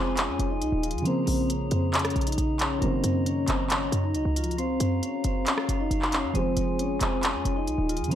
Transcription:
Already playing: 808-style bass F1, felt piano F3 G#3, vibraphone C4 C5, pipe organ F4 G#4 G#5
0.17 vibraphone C#4 C#5, clap, closed hi-hat
0.28 808-style bass F2
0.39 808-style bass F1, closed hi-hat
0.50 vibraphone D#4 D#5
0.61 808-style bass C2, vibraphone D#4 D#5, closed hi-hat
0.72 808-style bass D#1
0.83 vibraphone F3 F4, closed hi-hat
0.91 808-style bass F2, closed hi-hat
0.98 felt piano C#3, closed hi-hat
1.04 pipe organ C#3 A#5, felt piano F3 A#3, vibraphone C4 C5, closed hi-hat
1.27 808-style bass A#1, open hi-hat
1.50 vibraphone C#4 C#5, closed hi-hat
1.71 808-style bass F2, vibraphone C4 C5, closed hi-hat
1.94 vibraphone C#4 C#5, clap, closed hi-hat
1.99 closed hi-hat
2.05 cross-stick, closed hi-hat
2.10 closed hi-hat
2.16 808-style bass A#1, closed hi-hat
2.21 closed hi-hat
2.27 vibraphone D#4 D#5, closed hi-hat
2.32 closed hi-hat
2.38 808-style bass A#1, vibraphone D#4 D#5, closed hi-hat
2.59 vibraphone C#4 C#5, clap, closed hi-hat
2.79 808-style bass F#1, felt piano D#3 F#3, vibraphone C4, pipe organ F#4 D#5, closed hi-hat
2.83 felt piano C#3 A#3, vibraphone C5
3.04 808-style bass F#2, closed hi-hat
3.26 vibraphone C#4 C#5, closed hi-hat
3.48 808-style bass F#1, vibraphone C4 C5, clap, closed hi-hat
3.70 vibraphone C#4 C#5, clap, closed hi-hat
3.92 808-style bass F#2, closed hi-hat
4.03 vibraphone D#4 D#5
4.14 808-style bass C#2, vibraphone D#4 D#5, closed hi-hat
4.25 808-style bass C#2
4.36 vibraphone F3 F4, closed hi-hat
4.44 closed hi-hat
4.51 closed hi-hat
4.58 vibraphone C4 C5, pipe organ F5, closed hi-hat
4.80 808-style bass F#2, closed hi-hat
5.03 vibraphone C#4 C#5, closed hi-hat
5.24 808-style bass F#1, vibraphone C4 C5, closed hi-hat
5.46 vibraphone C#4 C#5, clap, closed hi-hat
5.58 cross-stick
5.69 808-style bass F#1, closed hi-hat
5.80 vibraphone D#4 D#5
5.91 808-style bass F#1, vibraphone D#4 D#5, closed hi-hat
6.02 clap
6.12 vibraphone C#4 C#5, clap, closed hi-hat
6.24 808-style bass F#2
6.33 808-style bass F1, felt piano F3 G#3, vibraphone C4 C5, pipe organ F4 G#4 G#5, closed hi-hat
6.57 808-style bass F1, closed hi-hat
6.79 vibraphone C#4 C#5, closed hi-hat
7.01 808-style bass F1, vibraphone C4 C5, clap, closed hi-hat
7.23 vibraphone C#4 C#5, clap, closed hi-hat
7.34 808-style bass F2
7.45 808-style bass F1, closed hi-hat
7.56 vibraphone D#4 D#5
7.67 808-style bass C2, vibraphone D#4 D#5, closed hi-hat
7.78 808-style bass D#1
7.89 vibraphone F3 F4, closed hi-hat
7.97 808-style bass F2, closed hi-hat
8.04 felt piano C#3, closed hi-hat
8.10 pipe organ C#3 A#5, felt piano F3, vibraphone C4, closed hi-hat

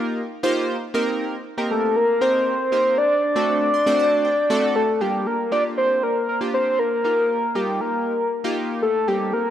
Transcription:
Already playing: synth keys A#3 D#4 F4 G4 A#4
0.43 synth keys A#3 D#4 F4 G4 C5
0.94 synth keys A#3 C4 D#4 G4 A#4
1.57 synth keys A#3 C4 D#4 G4 A#4
1.71 soft synth lead A4
1.96 soft synth lead A#4
2.21 synth keys A#3 C4 D#4 G4 A#4, soft synth lead C5
2.72 synth keys A#3 C4 D#4 G4 A#4
2.98 soft synth lead D5
3.36 synth keys A3 C4 D4 F#4 A4
3.74 synth keys C6
3.86 synth keys A3 C4 D4 F#4 C5
3.99 synth keys A5
4.25 synth keys G5
4.50 synth keys A3 C4 D4 F#4 A4 F#5
4.76 soft synth lead A4
5.01 synth keys A#3 D4 F4 G4, soft synth lead G4
5.27 soft synth lead A#4
5.52 synth keys A#3 D4 F4 G4, soft synth lead D5
5.78 soft synth lead C5
6.03 soft synth lead A#4
6.29 soft synth lead A#4
6.41 synth keys A#3 D4 F4 G4
6.54 soft synth lead C5
6.79 soft synth lead A#4
7.04 synth keys A#3 D#4 F4 G4, soft synth lead A#4
7.55 synth keys A#3 D#4 F4 G4, soft synth lead G4
7.81 soft synth lead A#4
8.44 synth keys A#3 D#4 F4 G4
8.82 soft synth lead A4
9.08 synth keys A#3 C4 D#4 G4, soft synth lead G4
9.33 soft synth lead A#4

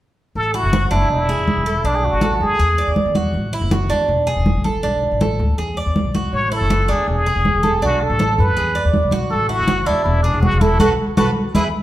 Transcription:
0.35 upright bass A1, muted trumpet A4, high conga
0.54 cuban tres E4, muted trumpet F#4, high conga
0.63 upright bass F#1
0.73 cuban tres F#4, high conga
0.91 upright bass F#1, cuban tres D4, muted trumpet E4
1.10 upright bass E1, muted trumpet E4, high conga
1.29 cuban tres G#4, high conga
1.38 upright bass E1
1.48 high conga
1.57 upright bass E1
1.66 cuban tres A4
1.84 upright bass B1, cuban tres D4, muted trumpet D4, high conga
1.96 muted trumpet G#4
2.03 muted trumpet F#4, high conga
2.13 upright bass A1
2.21 cuban tres A4, high conga
2.40 upright bass F#2, muted trumpet G#4, high conga
2.59 upright bass E2, cuban tres G#4, high conga
2.78 cuban tres D5, high conga
2.87 upright bass E2
2.96 high conga
3.06 upright bass E2
3.15 cuban tres F#4, high conga
3.34 upright bass A1, high conga
3.53 cuban tres E4, high conga
3.61 upright bass F#1
3.71 cuban tres F#4, high conga
3.90 upright bass E2, cuban tres D4
4.08 upright bass E1, high conga
4.27 cuban tres G#4, high conga
4.36 upright bass E1
4.46 high conga
4.55 upright bass A1
4.64 cuban tres A4, high conga
4.83 upright bass B1, cuban tres D4, high conga
5.03 high conga
5.11 upright bass A1
5.21 cuban tres A4, high conga
5.39 upright bass D2, high conga
5.58 upright bass E2, cuban tres G#4, high conga
5.77 cuban tres D5, high conga
5.86 upright bass E2
5.96 high conga
6.04 upright bass B1
6.14 cuban tres F#4, high conga
6.33 upright bass A1, muted trumpet C#5, high conga
6.52 cuban tres E4, muted trumpet A4, high conga
6.61 upright bass F#1
6.70 cuban tres F#4, high conga
6.88 upright bass E2, cuban tres D4, muted trumpet G#4
7.08 upright bass E1, muted trumpet G#4, high conga
7.26 cuban tres G#4, high conga
7.36 upright bass E1
7.45 high conga
7.55 upright bass E1
7.63 cuban tres A4, high conga
7.82 upright bass B1, cuban tres D4, muted trumpet F#4, high conga
8.01 muted trumpet A4, high conga
8.10 upright bass A1
8.19 cuban tres A4, high conga
8.38 upright bass F#2, muted trumpet B4, high conga
8.57 upright bass E2, cuban tres G#4, high conga
8.75 cuban tres D5, high conga
8.85 upright bass E2
8.94 high conga
9.03 upright bass B1
9.11 cuban tres F#4, high conga
9.30 upright bass A1, muted trumpet A4, high conga
9.49 cuban tres E4, muted trumpet F#4, high conga
9.59 upright bass F#1
9.68 cuban tres F#4, high conga
9.86 upright bass E2, cuban tres D4, muted trumpet E4
10.04 upright bass E1, muted trumpet E4, high conga
10.23 muted trumpet D4, cuban tres G#4, high conga
10.34 upright bass E1
10.42 muted trumpet F#4, high conga
10.53 upright bass E1
10.61 muted trumpet E4, cuban tres A4, high conga
10.80 upright bass B1, cuban tres F#4 A4 B4, muted trumpet F#4, high conga
11.17 upright bass B1, cuban tres F#4 A4 B4, muted trumpet F#4, high conga
11.54 upright bass E2, muted trumpet E4, cuban tres E4 G#4 B4, high conga

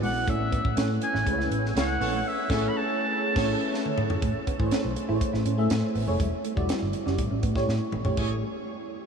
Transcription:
Already playing: fm electric piano B3 E4 F#4 G#4 D5
0.02 fingered electric bass A#1, clean electric guitar G#3, oboe F#5, open hi-hat
0.27 fingered electric bass A1, clean electric guitar A3, fm electric piano A3 C#4 E4 G#4 C#5, oboe E5, kick, closed hi-hat
0.40 muted clean electric guitar stroke
0.52 clean electric guitar B3, kick, closed hi-hat
0.65 fingered electric bass A1, kick
0.77 fingered electric bass A2, fm electric piano A3 C#4 E4 G#4 C#5, clean electric guitar C#4, snare, closed hi-hat
1.02 oboe G#5, muted clean electric guitar stroke, closed hi-hat
1.14 fingered electric bass A1, clean electric guitar E4, snare
1.26 fingered electric bass C#2, fm electric piano A3 C#4 E4 G#4 B4, muted clean electric guitar stroke, kick, closed hi-hat
1.33 fm electric piano C#5
1.39 clean electric guitar E4, snare
1.51 fingered electric bass A1, clean electric guitar C#4, closed hi-hat
1.66 snare
1.75 fingered electric bass C#2, fm electric piano A3 C#4 E4 G#4 C#5, horn section C#4 A4 C#5, oboe F#5, muted clean electric guitar stroke, snare, closed hi-hat
2.00 fingered electric bass A#1, clean electric guitar B3, horn section C#4 A4 C#5, open hi-hat
2.13 clean electric guitar A3
2.27 oboe E5
2.49 fingered electric bass A1, fm electric piano A3 C#4 E4 G#4 C#5, horn section C#4 A4 C#5, kick, snare, crash
2.68 oboe B5
2.77 oboe A5
3.36 fingered electric bass A1, fm electric piano A3 C#4 E4 G#4 C#5, horn section C#4 A4 C#5, kick, snare, crash
3.74 snare
3.86 high tom
3.98 mid tom
4.10 floor tom
4.22 fingered electric bass A1, clean electric guitar A3, kick, closed hi-hat
4.34 muted clean electric guitar stroke
4.47 clean electric guitar B3, kick, closed hi-hat
4.59 fingered electric bass G#1, fm electric piano A3 E4 G#4 C5, kick
4.66 fm electric piano C#5
4.71 clean electric guitar C#4, snare, closed hi-hat
4.84 fingered electric bass B1
4.96 muted clean electric guitar stroke, closed hi-hat
5.08 fingered electric bass A1, fm electric piano A3 E4 G#4 C5, clean electric guitar E4
5.15 fm electric piano C#5
5.21 muted clean electric guitar stroke, kick, closed hi-hat
5.33 fingered electric bass A1, clean electric guitar E4, snare
5.46 fingered electric bass A2, clean electric guitar C#4, closed hi-hat
5.58 fm electric piano A3 E4 G#4 E5
5.70 fingered electric bass A2, muted clean electric guitar stroke, snare, closed hi-hat
5.95 fingered electric bass A1, clean electric guitar B3, open hi-hat
6.07 fingered electric bass F1, fm electric piano A3 E4 G#4 C#5, clean electric guitar A3
6.20 fingered electric bass E1, clean electric guitar G3, kick, closed hi-hat
6.33 muted clean electric guitar stroke
6.45 clean electric guitar A3, closed hi-hat
6.56 fingered electric bass E1, fm electric piano G3 E4 F#4 D5, kick
6.69 clean electric guitar B3, snare, closed hi-hat
6.82 fingered electric bass G1
6.93 muted clean electric guitar stroke, closed hi-hat
7.06 fingered electric bass F#1, fm electric piano G3 E4 F#4 D5, clean electric guitar C#4, snare
7.18 fingered electric bass A1, muted clean electric guitar stroke, kick, closed hi-hat
7.31 fingered electric bass A1, clean electric guitar C#4
7.43 fingered electric bass A2, clean electric guitar B3, kick, closed hi-hat
7.55 fm electric piano A3 E4 G4 C#5, kick, snare
7.68 fingered electric bass A2, snare
7.92 fingered electric bass A1, clean electric guitar A3, mid tom
8.05 fingered electric bass A#1, fm electric piano A3 E4 G4 C#5, floor tom
8.17 fingered electric bass A1, horn section A3 G#4 C#5, clean electric guitar A3, fm electric piano A3 E4 G#4 C#5, kick, crash

